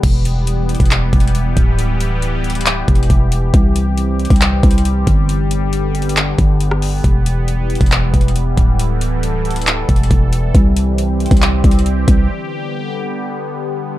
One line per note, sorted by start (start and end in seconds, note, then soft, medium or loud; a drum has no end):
0.03 0.77 E1 loud
0.03 5.25 E3 medium
0.03 3.50 G3 medium
0.03 3.50 B3 medium
0.03 8.75 G4 loud
0.03 kick loud
0.03 closed hi-hat medium
0.03 crash medium
0.25 closed hi-hat medium
0.47 closed hi-hat medium
0.69 closed hi-hat soft
0.75 closed hi-hat soft
0.80 1.12 E1 medium
0.80 kick loud
0.80 closed hi-hat medium
0.86 closed hi-hat medium
0.91 clap loud
0.91 closed hi-hat medium
1.13 1.55 E1 loud
1.13 kick loud
1.13 closed hi-hat medium
1.20 closed hi-hat medium
1.28 closed hi-hat medium
1.35 closed hi-hat medium
1.57 2.84 D1 loud
1.57 kick medium
1.57 closed hi-hat medium
1.79 closed hi-hat medium
2.01 closed hi-hat medium
2.22 closed hi-hat medium
2.44 closed hi-hat soft
2.50 closed hi-hat medium
2.55 closed hi-hat medium
2.61 closed hi-hat medium
2.66 clap loud
2.66 closed hi-hat medium
2.88 3.09 E1 loud
2.88 kick loud
2.88 closed hi-hat medium
2.95 closed hi-hat medium
3.03 closed hi-hat medium
3.10 3.52 E1 loud
3.10 kick medium
3.10 closed hi-hat medium
3.32 closed hi-hat medium
3.54 4.27 C2 loud
3.54 7.01 G3 medium
3.54 5.27 C4 medium
3.54 kick loud
3.54 closed hi-hat medium
3.76 closed hi-hat medium
3.98 closed hi-hat medium
4.20 closed hi-hat soft
4.25 closed hi-hat soft
4.30 4.62 C2 loud
4.30 kick loud
4.30 closed hi-hat medium
4.36 closed hi-hat medium
4.41 clap loud
4.41 closed hi-hat medium
4.63 5.05 C2 loud
4.63 kick loud
4.63 closed hi-hat medium
4.71 closed hi-hat medium
4.78 closed hi-hat medium
4.85 closed hi-hat medium
5.07 6.35 G1 loud
5.07 kick medium
5.07 closed hi-hat medium
5.29 7.02 D3 medium
5.29 10.51 B3 medium
5.29 closed hi-hat medium
5.51 closed hi-hat medium
5.73 closed hi-hat medium
5.95 closed hi-hat medium
6.02 closed hi-hat medium
6.09 closed hi-hat medium
6.17 clap loud
6.17 closed hi-hat medium
6.39 7.02 G1 loud
6.39 kick loud
6.39 closed hi-hat medium
6.60 closed hi-hat medium
6.71 cross-stick loud
6.82 open hi-hat medium
7.04 7.78 E1 loud
7.04 12.26 E3 medium
7.04 13.98 G3 medium
7.04 kick loud
7.04 closed hi-hat medium
7.26 closed hi-hat medium
7.48 closed hi-hat medium
7.70 closed hi-hat soft
7.75 closed hi-hat soft
7.81 8.12 E1 loud
7.81 kick loud
7.81 closed hi-hat medium
7.86 closed hi-hat medium
7.92 clap loud
7.92 closed hi-hat medium
8.14 8.56 E1 loud
8.14 kick loud
8.14 closed hi-hat medium
8.21 closed hi-hat medium
8.28 closed hi-hat medium
8.36 closed hi-hat medium
8.57 9.85 D1 loud
8.57 kick medium
8.57 closed hi-hat medium
8.79 10.53 A4 medium
8.79 closed hi-hat medium
9.01 closed hi-hat medium
9.23 closed hi-hat medium
9.45 closed hi-hat soft
9.51 closed hi-hat medium
9.56 closed hi-hat medium
9.62 closed hi-hat medium
9.67 clap loud
9.67 closed hi-hat medium
9.89 10.10 E1 loud
9.89 kick loud
9.89 closed hi-hat medium
9.96 closed hi-hat medium
10.03 closed hi-hat medium
10.11 10.53 E1 loud
10.11 kick medium
10.11 closed hi-hat medium
10.33 closed hi-hat medium
10.55 11.28 C2 loud
10.55 12.28 C4 medium
10.55 13.98 G4 medium
10.55 kick loud
10.55 closed hi-hat medium
10.76 closed hi-hat medium
10.98 closed hi-hat medium
11.20 closed hi-hat soft
11.26 closed hi-hat soft
11.31 11.63 C2 loud
11.31 kick loud
11.31 closed hi-hat medium
11.37 closed hi-hat medium
11.42 clap loud
11.42 closed hi-hat medium
11.64 12.06 C2 loud
11.64 kick loud
11.64 closed hi-hat medium
11.71 closed hi-hat medium
11.79 closed hi-hat medium
11.86 closed hi-hat medium
12.08 12.29 C2 loud
12.08 kick medium
12.08 closed hi-hat medium
12.30 13.98 D3 medium
12.30 13.98 B3 medium